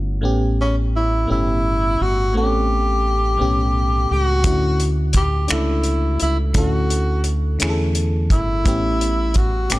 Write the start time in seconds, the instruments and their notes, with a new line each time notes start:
Already playing: fingered electric bass G1, fm electric piano D3 A3 C#4 E4 F#4
0.21 fm electric piano A2 A3 B3 C#4 G4
0.25 fingered electric bass A1
0.61 tenor saxophone C#4
0.96 tenor saxophone E4
1.26 fm electric piano A2 A3 B3 C#4
1.30 fingered electric bass G1, tenor saxophone E4, fm electric piano G4
2.01 fingered electric bass G1, tenor saxophone F#4
2.33 fingered electric bass A1, fm electric piano A2 A3 B3 C4
2.37 tenor saxophone G4, fm electric piano A4
2.43 fm electric piano C#4
3.37 fingered electric bass B1, fm electric piano A2 A3 B3 C#4
3.42 fm electric piano G4
4.11 fingered electric bass C#2, tenor saxophone F#4
4.43 fingered electric bass D2, fm electric piano D3 A3 C#4 E4, kick, closed hi-hat
4.47 fm electric piano F#4
4.80 closed hi-hat
5.13 tenor saxophone G4, kick, closed hi-hat
5.48 fingered electric bass C#2, fm electric piano A3 C#4 D4 E4, finger snap, closed hi-hat
5.52 tenor saxophone E4, fm electric piano A4
5.84 closed hi-hat
6.20 fingered electric bass C#2, tenor saxophone E4, closed hi-hat
6.53 fingered electric bass D2, fm electric piano D3 A3 C#4 E4, kick, closed hi-hat
6.57 tenor saxophone F#4, fm electric piano A4
6.90 closed hi-hat
7.24 closed hi-hat
7.59 fingered electric bass E2, fm electric piano D3 A3 C#4 E4, finger snap, closed hi-hat
7.63 fm electric piano G#4
7.70 fm electric piano A4
7.95 closed hi-hat
8.30 fingered electric bass G1, tenor saxophone E4, kick, closed hi-hat
8.64 fingered electric bass A1, fm electric piano A2 A3 B3 C#4, kick, closed hi-hat
8.68 fm electric piano G4
9.01 closed hi-hat
9.34 tenor saxophone F#4, kick, closed hi-hat
9.69 fingered electric bass G1, fm electric piano A2 A3 B3 C#4 G4, tenor saxophone G4, finger snap, closed hi-hat